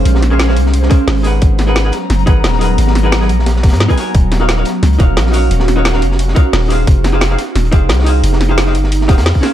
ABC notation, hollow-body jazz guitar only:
X:1
M:4/4
L:1/16
Q:"Swing 16ths" 1/4=176
K:Abmix
V:1 name="Hollow-body jazz guitar"
[DABcf]3 [DABcf]2 [DABcf] z4 [DABcf]4 [EAB_cg]2- | [EAB_cg]3 [EABcg]2 [EABcg] z4 [EABcg]4 [EABcg]2- | [EAB_cg]3 [EABcg]2 [EABcg] z6 z [EABca] [EGBda]2- | [EGBda]3 [EGBdf]2 [EGBdf] z4 [EGBdf]4 [EGBdf]2- |
[EGBdf]3 [EGBdf]2 [EGBdf] z4 [EGBdf]4 [E=GAcf]2- | [E=GAcf]3 [EGAcf]2 [EGAcf] z4 [EGAcf]4 [EGAcf]2- | [E=GAcf]3 [EGAcf]2 [EGAcf] z4 [EGAcf]4 [DABcf]2 |]